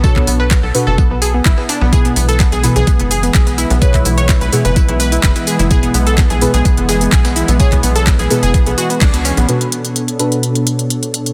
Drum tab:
HH |--o---o---o---o-|xxoxxxoxxxoxxxox|xxoxxxoxxxoxxxox|xxoxxxoxxxoxxxox|
TB |x-x-x-x-x-x-x-x-|x-x-x-x-x-x-x-x-|x-x-x-x-x-x-x-x-|x-x-x-x-x-x-xx-x|
SH |----------------|xxxxxxxxx-xxxxxx|xxxxxxxxx-xxxxxx|xxxxxxxxx-xxxxxx|
CP |-x--x-------x---|----x-------x---|-x--x-------x---|----x-------x---|
SD |----o--o-----ooo|----o--o---ooo-o|----o--o--o-o--o|----o--o--o--o--|
BD |oo--o---o---o---|o---o---o---o---|oo--o---o---o---|o---o---o---o---|

HH |xxoxxxoxxxoxxxox|xxxxxxxxxxxxxxxx|
TB |x-x-x-x-x-x-x-x-|----------------|
SH |xxxxxxxxxxxxxxxx|----------------|
CP |-x--x-------x---|----------------|
SD |----o--o--o-o--o|----------------|
BD |oo--o---o---o---|----------------|